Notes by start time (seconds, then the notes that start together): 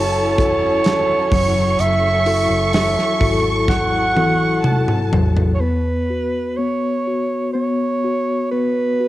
Already playing: F#1 F#3 C#4 E4 F#4 A4 C#5 A5
0.38 E4 F#4 A4, kick, hi-hat pedal, open hi-hat
0.84 snare, hi-hat pedal, open hi-hat
1.31 F#1 F#3 A4 C#6, kick, hi-hat pedal, open hi-hat
1.79 F#1 E5, hi-hat pedal, open hi-hat
2.26 E4 F#4 A4, hi-hat pedal, open hi-hat
2.50 F#1
2.73 E5, snare, hi-hat pedal, open hi-hat
2.99 snare
3.20 G#1 E4 F#4 A4, kick, hi-hat pedal, open hi-hat
3.68 F#5, kick, snare
4.15 E4 F#4 A4, high tom
4.64 A5, mid tom
4.88 mid tom
5.12 A1 F#3, floor tom
5.37 floor tom
5.54 C#5
5.60 B3 B4
6.10 F#4
6.57 B3 C#5
7.07 F#4
7.53 B3 C#5
8.04 F#4
8.51 B3 B4
9.01 F#4